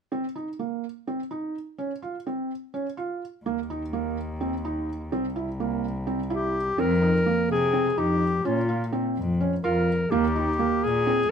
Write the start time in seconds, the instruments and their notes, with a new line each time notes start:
0.12 felt piano C4
0.36 felt piano D#4
0.59 felt piano A#3
1.07 felt piano C4
1.31 felt piano D#4
1.78 felt piano C#4
2.02 felt piano F4
2.27 felt piano C4
2.74 felt piano C#4
2.97 felt piano F4
3.45 cello D#2, felt piano A#3
3.70 felt piano D#4
3.93 felt piano A#3
4.41 felt piano C4
4.65 felt piano D#4
5.12 cello C2, felt piano C4
5.36 felt piano E4
5.60 felt piano A#3
6.07 felt piano C4
6.30 felt piano E4, clarinet G4
6.78 cello F2, felt piano C4, clarinet A#4
7.02 felt piano D#4
7.26 felt piano A#3
7.49 cello C3, clarinet G#4
7.73 felt piano C4
7.97 cello F2, felt piano D#4, clarinet G4
8.44 cello A#2, felt piano C#4, clarinet F4
8.69 felt piano F4
8.92 felt piano C4
9.17 cello F2
9.41 felt piano C#4
9.64 cello F2, felt piano F4, clarinet A#4
10.11 cello D#2, felt piano A#3, clarinet G4
10.36 felt piano D#4
10.59 felt piano A#3
10.84 cello A#2, clarinet G#4
11.07 felt piano C4